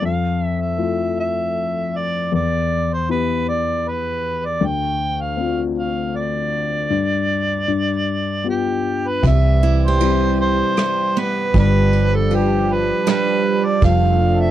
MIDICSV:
0, 0, Header, 1, 7, 480
1, 0, Start_track
1, 0, Key_signature, 0, "major"
1, 0, Tempo, 768246
1, 10, Time_signature, 3, 2, 24, 8
1, 7210, Tempo, 760456
1, 9084, End_track
2, 0, Start_track
2, 0, Title_t, "Harmonica"
2, 0, Program_c, 0, 22
2, 33, Note_on_c, 0, 77, 59
2, 271, Note_off_c, 0, 77, 0
2, 271, Note_on_c, 0, 76, 59
2, 385, Note_off_c, 0, 76, 0
2, 385, Note_on_c, 0, 76, 56
2, 744, Note_off_c, 0, 76, 0
2, 749, Note_on_c, 0, 76, 60
2, 1230, Note_on_c, 0, 74, 56
2, 1240, Note_off_c, 0, 76, 0
2, 1461, Note_off_c, 0, 74, 0
2, 1464, Note_on_c, 0, 74, 58
2, 1831, Note_on_c, 0, 72, 51
2, 1841, Note_off_c, 0, 74, 0
2, 1938, Note_off_c, 0, 72, 0
2, 1942, Note_on_c, 0, 71, 54
2, 2163, Note_off_c, 0, 71, 0
2, 2177, Note_on_c, 0, 74, 53
2, 2424, Note_on_c, 0, 71, 55
2, 2434, Note_off_c, 0, 74, 0
2, 2783, Note_on_c, 0, 74, 56
2, 2792, Note_off_c, 0, 71, 0
2, 2912, Note_on_c, 0, 79, 69
2, 2922, Note_off_c, 0, 74, 0
2, 3257, Note_on_c, 0, 77, 58
2, 3267, Note_off_c, 0, 79, 0
2, 3507, Note_off_c, 0, 77, 0
2, 3612, Note_on_c, 0, 77, 57
2, 3850, Note_on_c, 0, 74, 57
2, 3859, Note_off_c, 0, 77, 0
2, 5289, Note_off_c, 0, 74, 0
2, 5305, Note_on_c, 0, 67, 55
2, 5675, Note_on_c, 0, 71, 51
2, 5685, Note_off_c, 0, 67, 0
2, 5784, Note_off_c, 0, 71, 0
2, 5789, Note_on_c, 0, 76, 72
2, 6117, Note_off_c, 0, 76, 0
2, 6153, Note_on_c, 0, 72, 67
2, 6479, Note_off_c, 0, 72, 0
2, 6502, Note_on_c, 0, 72, 76
2, 6994, Note_on_c, 0, 71, 69
2, 7003, Note_off_c, 0, 72, 0
2, 7223, Note_off_c, 0, 71, 0
2, 7243, Note_on_c, 0, 71, 78
2, 7596, Note_on_c, 0, 69, 66
2, 7606, Note_off_c, 0, 71, 0
2, 7721, Note_on_c, 0, 67, 65
2, 7730, Note_off_c, 0, 69, 0
2, 7958, Note_on_c, 0, 71, 70
2, 7968, Note_off_c, 0, 67, 0
2, 8185, Note_off_c, 0, 71, 0
2, 8194, Note_on_c, 0, 71, 75
2, 8541, Note_on_c, 0, 74, 68
2, 8550, Note_off_c, 0, 71, 0
2, 8656, Note_off_c, 0, 74, 0
2, 8665, Note_on_c, 0, 77, 93
2, 9018, Note_on_c, 0, 76, 80
2, 9027, Note_off_c, 0, 77, 0
2, 9084, Note_off_c, 0, 76, 0
2, 9084, End_track
3, 0, Start_track
3, 0, Title_t, "Steel-string acoustic guitar"
3, 0, Program_c, 1, 25
3, 6016, Note_on_c, 1, 64, 44
3, 6172, Note_on_c, 1, 67, 39
3, 6977, Note_on_c, 1, 59, 43
3, 7430, Note_off_c, 1, 59, 0
3, 7431, Note_off_c, 1, 64, 0
3, 7569, Note_off_c, 1, 67, 0
3, 8175, Note_on_c, 1, 55, 59
3, 8867, Note_off_c, 1, 55, 0
3, 9084, End_track
4, 0, Start_track
4, 0, Title_t, "Grand piano"
4, 0, Program_c, 2, 0
4, 0, Control_c, 2, 64, 127
4, 13, Note_on_c, 2, 41, 45
4, 17, Control_c, 2, 64, 0
4, 131, Control_c, 2, 64, 127
4, 486, Note_on_c, 2, 57, 30
4, 488, Note_on_c, 2, 65, 35
4, 489, Note_on_c, 2, 64, 29
4, 961, Note_off_c, 2, 57, 0
4, 962, Note_off_c, 2, 64, 0
4, 962, Note_off_c, 2, 65, 0
4, 1439, Note_off_c, 2, 41, 0
4, 1450, Note_on_c, 2, 40, 44
4, 1472, Control_c, 2, 64, 0
4, 1599, Control_c, 2, 64, 127
4, 1929, Note_on_c, 2, 64, 29
4, 1930, Note_on_c, 2, 59, 31
4, 1937, Note_on_c, 2, 67, 35
4, 2397, Note_off_c, 2, 59, 0
4, 2397, Note_off_c, 2, 64, 0
4, 2401, Note_off_c, 2, 67, 0
4, 2861, Note_off_c, 2, 40, 0
4, 2879, Note_on_c, 2, 38, 49
4, 2900, Control_c, 2, 64, 0
4, 2997, Control_c, 2, 64, 127
4, 3355, Note_on_c, 2, 60, 33
4, 3358, Note_on_c, 2, 62, 29
4, 3363, Note_on_c, 2, 65, 37
4, 3821, Note_off_c, 2, 60, 0
4, 3823, Note_off_c, 2, 62, 0
4, 3826, Note_off_c, 2, 65, 0
4, 4288, Note_off_c, 2, 38, 0
4, 4312, Note_on_c, 2, 43, 44
4, 4329, Control_c, 2, 64, 0
4, 4423, Control_c, 2, 64, 127
4, 4782, Note_off_c, 2, 43, 0
4, 4797, Note_on_c, 2, 43, 46
4, 4809, Control_c, 2, 64, 0
4, 4928, Control_c, 2, 64, 127
4, 5274, Note_on_c, 2, 59, 30
4, 5274, Note_on_c, 2, 65, 29
4, 5278, Note_on_c, 2, 67, 34
4, 5745, Note_off_c, 2, 43, 0
4, 5751, Note_off_c, 2, 59, 0
4, 5751, Note_off_c, 2, 65, 0
4, 5753, Note_off_c, 2, 67, 0
4, 5764, Note_on_c, 2, 48, 49
4, 5778, Control_c, 2, 64, 0
4, 5872, Control_c, 2, 64, 127
4, 6248, Note_on_c, 2, 55, 37
4, 6251, Note_on_c, 2, 64, 45
4, 6253, Note_on_c, 2, 60, 35
4, 6717, Note_off_c, 2, 55, 0
4, 6719, Note_off_c, 2, 60, 0
4, 6719, Note_off_c, 2, 64, 0
4, 7185, Note_off_c, 2, 48, 0
4, 7216, Note_on_c, 2, 55, 54
4, 7220, Control_c, 2, 64, 0
4, 7325, Control_c, 2, 64, 127
4, 7690, Note_on_c, 2, 65, 42
4, 7695, Note_on_c, 2, 67, 36
4, 7695, Note_on_c, 2, 71, 46
4, 8157, Note_off_c, 2, 65, 0
4, 8159, Note_off_c, 2, 67, 0
4, 8159, Note_off_c, 2, 71, 0
4, 8628, Note_off_c, 2, 55, 0
4, 8654, Note_on_c, 2, 53, 54
4, 8661, Control_c, 2, 64, 0
4, 8763, Control_c, 2, 64, 127
4, 9084, Note_off_c, 2, 53, 0
4, 9084, End_track
5, 0, Start_track
5, 0, Title_t, "Harmonium"
5, 0, Program_c, 3, 20
5, 5764, Note_on_c, 3, 52, 60
5, 5767, Note_on_c, 3, 55, 52
5, 5769, Note_on_c, 3, 67, 66
5, 7195, Note_off_c, 3, 52, 0
5, 7208, Note_on_c, 3, 53, 61
5, 7208, Note_on_c, 3, 62, 54
5, 8624, Note_off_c, 3, 55, 0
5, 8625, Note_off_c, 3, 67, 0
5, 8642, Note_on_c, 3, 57, 60
5, 8642, Note_on_c, 3, 69, 75
5, 8645, Note_on_c, 3, 60, 61
5, 9084, Note_off_c, 3, 53, 0
5, 9084, Note_off_c, 3, 57, 0
5, 9084, Note_off_c, 3, 60, 0
5, 9084, Note_off_c, 3, 62, 0
5, 9084, Note_off_c, 3, 69, 0
5, 9084, End_track
6, 0, Start_track
6, 0, Title_t, "Fingered electric bass"
6, 0, Program_c, 4, 33
6, 5768, Note_on_c, 4, 36, 74
6, 6630, Note_off_c, 4, 36, 0
6, 7211, Note_on_c, 4, 31, 72
6, 8070, Note_off_c, 4, 31, 0
6, 8652, Note_on_c, 4, 29, 82
6, 9084, Note_off_c, 4, 29, 0
6, 9084, End_track
7, 0, Start_track
7, 0, Title_t, "Drums"
7, 5769, Note_on_c, 9, 51, 42
7, 5770, Note_on_c, 9, 36, 67
7, 5832, Note_off_c, 9, 36, 0
7, 5832, Note_off_c, 9, 51, 0
7, 6249, Note_on_c, 9, 51, 44
7, 6312, Note_off_c, 9, 51, 0
7, 6728, Note_on_c, 9, 51, 43
7, 6734, Note_on_c, 9, 37, 60
7, 6790, Note_off_c, 9, 51, 0
7, 6797, Note_off_c, 9, 37, 0
7, 7210, Note_on_c, 9, 51, 38
7, 7212, Note_on_c, 9, 36, 71
7, 7273, Note_off_c, 9, 51, 0
7, 7275, Note_off_c, 9, 36, 0
7, 7454, Note_on_c, 9, 51, 35
7, 7517, Note_off_c, 9, 51, 0
7, 7693, Note_on_c, 9, 51, 39
7, 7756, Note_off_c, 9, 51, 0
7, 8174, Note_on_c, 9, 51, 43
7, 8180, Note_on_c, 9, 37, 60
7, 8237, Note_off_c, 9, 51, 0
7, 8244, Note_off_c, 9, 37, 0
7, 8648, Note_on_c, 9, 51, 39
7, 8651, Note_on_c, 9, 36, 73
7, 8711, Note_off_c, 9, 51, 0
7, 8714, Note_off_c, 9, 36, 0
7, 9084, End_track
0, 0, End_of_file